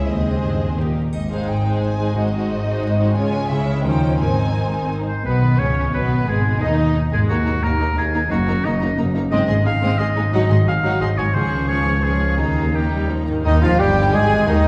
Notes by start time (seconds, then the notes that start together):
Already playing: C#3 C#4 G#4
0.08 D#2 D#3 G#3 C4 G#4 C5 D#5
0.26 C4
0.43 G2 G#4
0.60 G#2 C5
0.78 A#2 D#3 A#3 D#4 G4 A#4
0.95 D#4 G4
1.13 G#1 G#2 D#5, triangle
1.30 G#3 C4 D#4 G#4 C5 F5
1.47 G#1 G#2 G#4 G5
1.64 G#3 D#4 G#4 C5
1.81 G#1 G#2 D#4 G#5
1.98 G#3 C4 D#4 G#4 C5
2.15 G#1 G#2 G#3 D#4 F#4 C5 D#5
2.32 G#3 C4 D#4 F#4 C5
2.49 G#1 G#2 G#4
2.66 G#3 D#4 F#4 C5
2.82 G#1 G#2 F#4
2.99 G#3 C4 D#4 F#4 C5
3.15 C#2 C#3 G#3 C#4 F4 C#5 G#5
3.33 F4 G#4
3.50 C#2 C#3 G#3 C#4 E4 C#5 E5
3.67 E4 G#4
3.84 D#2 D#3 F3 C#4 D#4 C5 G5
4.02 F4 C5
4.19 G#1 G#2 D#3 C4 D#4 C5 G#5
4.37 C4
4.55 C5
4.72 D#4
4.90 C4
5.07 D#3 C5
5.24 B1 G#2 B2 B3 B4
5.42 D#3
5.59 C#2 C#3 B3 C#4 C#5
5.76 D#4
5.93 B1 B2 B3 B4 D#5
6.11 B3
6.27 G#1 G#2 B2 G#3 G#4
6.45 G#3
6.61 D#2 D#3 B3 D#4 D#5
6.78 D#4
6.95 D#5
7.12 G#1 G#2 G#3 B3 G#4
7.28 D#2 D#3 A#3 D#4 F#4 A#5
7.45 A#3 D#4 A#5
7.62 D#2 A#3 D#4 A#4 A#5
7.79 A#3 D#4 D#5 A#5
7.96 D#2 A#3 D#4 G#4 A#4 A#5
8.13 A#3 D#4 A#5
8.30 F#1 F#2 A#3 D#4 F#4 A#5
8.47 F#3 A#3 D#4 A#5
8.64 F#1 F#2 A#3 D#4 D#5 A#5
8.81 A#3 D#4 A#5
8.98 F#1 F#2 A#3 D#4 D#5 A#5
9.15 A#3 D#4 A#5
9.31 G#1 G#2 G#3 C4 D#5
9.48 G#1 G#2 D#3 G#3 G#4 C6
9.65 G#1 G#2 G#3 D#4 F5 G#5
9.82 G#1 G#2 G#3 C4 D#4 D#5
9.98 G#1 G#2 G#3 G#4 C5 D#5 C6
10.16 G#1 G#2 G#3 D#4 G#5
10.32 G#1 G#2 F#3 D#4 D#5 F#5
10.49 G#1 G#2 D#3 F#3 G#4 C6
10.66 G#1 G#2 F#3 F#4 F5 G#5
10.83 G#1 G#2 F#3 D#4 F#5
11.00 G#1 G#2 F#3 G#4 C5 D#5 C6
11.16 G#1 G#2 F#3 F#4 C#5 G#5
11.34 C#2 C#3 F3 G#4 C5 C#6
11.51 C#4
11.68 F3 G#4 C#5 C#6
11.86 F4
12.02 F3 G#4 C#5 C#6
12.21 F3
12.38 D#2 D#3 D#4 G#4 A#5
12.57 A#3
12.74 D#3 D#4 G4 A#5
12.92 G3 A#4
13.10 F3 D#4
13.27 G#2 D#3 A#3
13.32 G#3
13.36 D#4
13.41 D#2 D#3 D#4 C5 D#5
13.45 D#2 D#3 D#4
13.61 F1 F2 F3 F4 F5
13.78 G1 G2 G3 G4 G5
14.13 G#1 G#2 G#3 G#4 G#5
14.30 G#2
14.34 G#3
14.39 F#4
14.43 D#3 C5
14.47 D#2 D#3 D#4 D#5